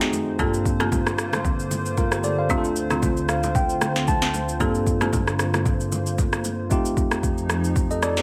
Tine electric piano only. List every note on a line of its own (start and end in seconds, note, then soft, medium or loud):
0.00 0.42 A3 medium
0.00 0.38 C4 medium
0.00 0.40 D#4 medium
0.00 0.40 F#4 medium
0.00 0.40 G#4 medium
0.38 2.19 G2 medium
0.38 2.20 A#3 medium
0.38 2.20 C4 medium
0.38 2.20 D4 medium
0.38 1.95 F4 medium
0.38 1.95 A4 medium
1.98 2.12 F4 medium
1.98 2.11 A#4 medium
2.12 2.24 G4 medium
2.12 2.23 C5 medium
2.24 2.38 A4 medium
2.24 2.38 D5 medium
2.38 2.64 C5 medium
2.38 2.63 F5 medium
2.49 4.56 A3 medium
2.49 4.56 C4 medium
2.49 4.57 D4 medium
2.49 4.57 F4 medium
2.49 2.58 G4 medium
2.58 4.60 A4 medium
3.29 3.54 F5 medium
3.56 4.04 G5 medium
4.08 4.57 A5 medium
4.59 6.66 G2 medium
4.59 6.67 A#3 medium
4.59 6.67 C4 medium
4.59 6.67 D4 medium
4.59 6.67 F4 medium
4.59 6.68 A4 medium
6.70 8.22 A3 medium
6.70 8.22 C4 medium
6.70 8.22 D#4 medium
6.70 8.22 F4 medium
6.70 7.75 G4 medium
7.91 8.02 A4 medium
7.91 8.02 D#5 medium
8.03 8.17 A4 medium
8.03 8.16 D5 medium
8.17 8.22 G4 medium
8.17 8.22 C5 medium